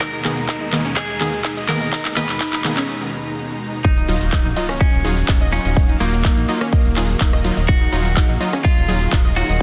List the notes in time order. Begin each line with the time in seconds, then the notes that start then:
Already playing: D#2 B2 G#3 D#4, riser
0.00 D#4 A#4 A#5, kick, clap, closed hi-hat, maracas
0.13 D#4, closed hi-hat
0.24 D#3 A#3 B3 D#4 G#4, clap, open hi-hat, maracas
0.37 closed hi-hat, maracas
0.49 D#4, kick, clap, closed hi-hat, maracas
0.61 D#4, closed hi-hat
0.72 D#3 A#3 B3 G#4 D#5, clap, open hi-hat, maracas
0.85 C#4, closed hi-hat, maracas
0.96 G#4 D#5, kick, clap, closed hi-hat, maracas
1.09 closed hi-hat
1.20 D#3 A#3 B3 G#4, clap, open hi-hat, maracas
1.33 closed hi-hat, maracas
1.45 D#4, kick, clap, closed hi-hat, maracas
1.57 D#5, closed hi-hat
1.69 D#3 A#3 B3 G#4 A#4, clap, open hi-hat, maracas
1.81 D#5, closed hi-hat, maracas
1.93 D#4, kick, clap, closed hi-hat, maracas
2.05 D#4, clap, closed hi-hat
2.17 D#3 A#3 B3 D#4 G#4 B4, clap, open hi-hat, maracas
2.29 clap, closed hi-hat, maracas
2.40 D#4, kick, clap, closed hi-hat, maracas
2.53 D#4, clap, closed hi-hat
2.64 D#3 A#3 B3 G#4 D#5, clap, open hi-hat, maracas
2.77 C#4, clap, closed hi-hat, maracas
3.84 D#3 F#3 A#3 D#4 F#4 F5, kick, closed hi-hat, ride, impact, maracas
3.97 D#4, closed hi-hat
4.08 D#1 F#3 D#4 F4, open hi-hat, ride, maracas
4.21 closed hi-hat, maracas
4.32 D#4, kick, clap, closed hi-hat, ride, maracas
4.45 A#1 D#4, closed hi-hat
4.56 F#3 D#4 F4 D#5, open hi-hat, ride, maracas
4.69 C#4, cross-stick, closed hi-hat, maracas
4.80 C#4 D#5, kick, closed hi-hat, ride, maracas
4.93 D#1, closed hi-hat
5.04 F#3 D#4 F4 G#4, open hi-hat, ride, maracas
5.17 closed hi-hat, maracas
5.28 D#1 D#4, kick, clap, closed hi-hat, ride
5.41 D#5, closed hi-hat
5.52 F#3 C#4 D#4 F4, open hi-hat, ride, maracas
5.65 D#1 D#5, closed hi-hat, maracas
5.77 D#4, kick, closed hi-hat, ride, maracas
5.89 D#4, closed hi-hat
6.00 D#1 F#3 A#3 D#4 F4, open hi-hat, ride, maracas
6.12 closed hi-hat, maracas
6.25 D#4, kick, clap, closed hi-hat, maracas
6.37 A#1 D#4, closed hi-hat
6.48 F#3 D#4 F4 D#5, open hi-hat, ride, maracas
6.61 C#4, cross-stick, closed hi-hat, maracas
6.72 D#5, kick, closed hi-hat, ride, maracas
6.85 D#1, closed hi-hat
6.96 F#3 D#4 F4 G#4, clap, open hi-hat, ride, maracas
7.09 closed hi-hat, maracas
7.21 D#1 D#4, kick, clap, closed hi-hat, ride, maracas
7.33 D#5, cross-stick, closed hi-hat
7.44 F#3 D#4 F4, open hi-hat, ride, maracas
7.57 D#1 D#5, closed hi-hat, maracas
7.68 D#4 F#4 G#4, kick, closed hi-hat, ride, maracas
7.81 D#4, closed hi-hat
7.92 D#1 F#3 D#4 F4, open hi-hat, ride, maracas
8.05 closed hi-hat, maracas
8.16 D#4, kick, clap, closed hi-hat, ride, maracas
8.29 A#1 D#4, closed hi-hat
8.40 F#3 D#4 F4 D#5, open hi-hat, ride, maracas
8.53 C#4, cross-stick, closed hi-hat, maracas
8.64 F4 D#5, kick, closed hi-hat, ride, maracas
8.77 D#1, closed hi-hat
8.88 F#3 D#4 F4 G#4, open hi-hat, ride, maracas
9.01 closed hi-hat, maracas
9.13 D#1 D#4, kick, clap, closed hi-hat, maracas
9.25 D#5, closed hi-hat
9.36 F#3 D#4 F4 F#4, open hi-hat, ride, maracas
9.49 D#1 D#5, closed hi-hat, maracas